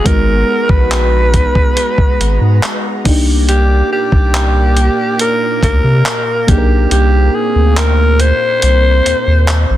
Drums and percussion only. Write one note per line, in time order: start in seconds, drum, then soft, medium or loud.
0.05 kick loud
0.05 closed hi-hat medium
0.69 kick loud
0.91 clap loud
0.91 closed hi-hat medium
1.34 kick medium
1.34 closed hi-hat medium
1.55 kick medium
1.77 closed hi-hat medium
1.98 kick loud
2.21 closed hi-hat medium
2.63 clap loud
2.63 closed hi-hat medium
3.05 kick loud
3.05 open hi-hat medium
3.49 closed hi-hat medium
4.12 kick loud
4.34 clap loud
4.34 closed hi-hat medium
4.77 closed hi-hat medium
5.19 closed hi-hat medium
5.63 kick medium
5.63 closed hi-hat medium
6.06 clap loud
6.06 closed hi-hat medium
6.48 kick loud
6.48 closed hi-hat medium
6.91 closed hi-hat medium
7.77 clap loud
7.77 closed hi-hat medium
8.20 closed hi-hat medium
8.62 closed hi-hat medium
9.06 closed hi-hat medium
9.48 clap loud
9.48 closed hi-hat medium